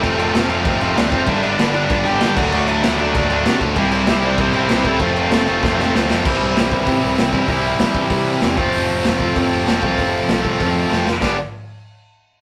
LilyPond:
<<
  \new Staff \with { instrumentName = "Lead electric guitar" } { \time 4/4 \key c \lydian \tempo 4 = 193 <a a'>4 r2 <d' d''>8 <c' c''>8 | <e' e''>8. <d' d''>8. <d' d''>4 <g' g''>4 <fis' fis''>8~ | <fis' fis''>8 <e' e''>4 <d' d''>2 r8 | r4 <e' e''>8 <d' d''>8 <c' c''>4 <b b'>8 <a a'>8~ |
<a a'>2. r4 | r1 | r1 | r1 |
r1 | r1 | }
  \new Staff \with { instrumentName = "Overdriven electric guitar" } { \time 4/4 \key c \lydian <f, c f a c'>8 <f, c f a c'>8 <f, c f a c'>8 <f, c f a c'>8 <f, c f a c'>8 <f, c f a c'>8 <f, c f a c'>8 <f, c f a c'>8 | <g, d g b d'>8 <g, d g b d'>8 <g, d g b d'>8 <g, d g b d'>8 <g, d g b d'>8 <g, d g b d'>8 <g, d g b d'>8 <d fis a d'>8 | <d fis a d'>8 <d fis a d'>8 <d fis a d'>8 <d fis a d'>8 <d fis a d'>8 <d fis a d'>8 <d fis a d'>8 <d fis a d'>8 | <c g c' e'>8 <c g c' e'>8 <c g c' e'>8 <c g c' e'>8 <c g c' e'>8 <c g c' e'>8 <c g c' e'>8 <c g c' e'>8 |
<f a c' f'>8 <f a c' f'>8 <f a c' f'>8 <f a c' f'>8 <f a c' f'>8 <f a c' f'>8 <f a c' f'>8 <f a c' f'>8 | <c e g c' e'>1 | <c e g c' e'>2.~ <c e g c' e'>8 <f a c' f'>8~ | <f a c' f'>2.~ <f a c' f'>8 <f a c' f'>8~ |
<f a c' f'>2.~ <f a c' f'>8 r8 | <g, d g b d' g'>8 r2. r8 | }
  \new Staff \with { instrumentName = "Distorted electric guitar" } { \clef bass \time 4/4 \key c \lydian <f, c f a c' f'>8 <f, c f a c' f'>8 <f, c f a c' f'>8 <f, c f a c' f'>8 <f, c f a c' f'>8 <f, c f a c' f'>8 <f, c f a c' f'>8 <f, c f a c' f'>8 | <g, d g b d'>8 <g, d g b d'>8 <g, d g b d'>8 <g, d g b d'>8 <g, d g b d'>8 <g, d g b d'>8 <g, d g b d'>8 <d fis a d'>8 | <d fis a d'>8 <d fis a d'>8 <d fis a d'>8 <d fis a d'>8 <d fis a d'>8 <d fis a d'>8 <d fis a d'>8 <d fis a d'>8 | <c g c' e'>8 <c g c' e'>8 <c g c' e'>8 <c g c' e'>8 <c g c' e'>8 <c g c' e'>8 <c g c' e'>8 <c g c' e'>8 |
<f, c f a c'>8 <f, c f a c'>8 <f, c f a c'>8 <f, c f a c'>8 <f, c f a c'>8 <f, c f a c'>8 <f, c f a c'>8 <f, c f a c'>8 | <c e g c' e'>2.~ <c e g c' e'>8 <c e g c' e'>8 | <c e g c' e'>2.~ <c e g c' e'>8 <f a c' f'>8~ | <f a c' f'>2. <f a c' f'>8 <f a c' f'>8~ |
<f a c' f'>2. <f a c' f'>8 r8 | <g, d g b d'>8 r2. r8 | }
  \new Staff \with { instrumentName = "Distorted electric guitar" } { \clef bass \time 4/4 \key c \lydian r1 | <g, d g>2~ <g, d g>8 <g, d g>8 <g, d g>8 <d a d'>8~ | <d a d'>2 <d a d'>8 <d a d'>4 r8 | <c g c'>2~ <c g c'>8 <c g c'>8 <c g c'>4 |
<f, c f>2~ <f, c f>8 <f, c f>8 <f, c f>4 | r1 | r1 | r1 |
r1 | r1 | }
  \new Staff \with { instrumentName = "Picked electric bass" } { \clef bass \time 4/4 \key c \lydian f,,4 f,,8 f,,8 f,,8 f,,8 d,8 f,,8 | g,,4 g,,4 g,,8 g,,8 g,,8 d,8 | d,4 d,8 d,8 d,8 d,8 c8 d,8 | c,4 c,4 c,8 c,8 c,8 c,8 |
f,,4 f,,8 f,,8 f,,8 f,,8 d,8 f,,8 | c,8 c,8 c,8 c,8 c8 c,8 c,8 g,8 | c,4 g,8 g,8 c4 e,8 f,,8 | f,,8 f,,8 f,,8 f,,8 f,8 f,,8 f,,8 c,8 |
f,,4 c,8 c,8 f,4 f,,8 f,,8 | g,,8 r2. r8 | }
  \new DrumStaff \with { instrumentName = "Drums" } \drummode { \time 4/4 <cymc bd>8 cymc8 <cymc sn>8 cymc8 <cymc bd>8 cymc8 <cymc sn>8 <cymc bd>8 | <cymc bd>8 cymc8 <cymc sn>8 cymc8 <cymc bd>8 cymc8 <cymc sn>8 <cymc bd>8 | cymc8 cymc8 <cymc sn>8 cymc8 <cymc bd>8 cymc8 <cymc sn>8 <cymc bd>8 | <cymc bd>8 cymc8 <cymc sn>8 cymc8 <cymc bd>8 cymc8 <cymc sn>8 <cymc bd>8 |
<cymc bd>8 cymc8 <cymc sn>8 cymc8 <bd sn>8 sn8 sn8 sn8 | <cymc bd>4 <hho sn>8 bd8 <hho bd>4 <hho sn>8 bd8 | <hho bd>4 <hho sn>8 bd8 <hho bd>4 <hho sn>8 bd8 | hho4 <hho sn>8 bd8 <hho bd>4 <hho sn>8 bd8 |
<hho bd>4 <hho sn>8 bd8 <hho bd>4 sn8 sn8 | <cymc bd sn>4 r4 r4 r4 | }
>>